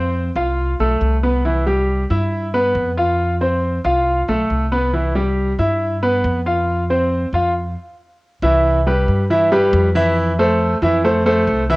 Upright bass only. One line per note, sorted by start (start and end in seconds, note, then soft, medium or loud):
0.00 0.30 F2 medium
0.36 0.76 C2 medium
0.80 1.00 B1 medium
1.01 2.04 C2 medium
2.10 2.72 G2 medium
2.75 3.78 F2 medium
3.84 4.25 C2 medium
4.28 4.48 B1 medium
4.50 5.53 C2 medium
5.59 6.20 G2 medium
6.24 7.27 F2 medium
7.33 7.74 F2 medium
8.42 9.04 C2 loud
9.08 9.69 G2 medium
9.73 10.76 F2 loud
10.82 11.44 F2 medium
11.47 11.76 C2 medium